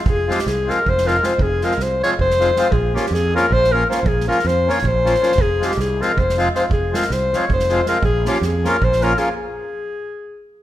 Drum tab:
SD |--ooo-o--oo-o-|--ooo-o--oo-o-|--ooo-o--o--o-|-oooo-oo--oooo|
BD |o-------o-----|o-------o-----|o-------o-----|o-------o-----|

SD |--ooo-o--oo-o-|--ooo-o--oo-o-|--ooo-o--oo-o-|--------------|
BD |o-------o-----|o-------o-----|o-------o-----|--------------|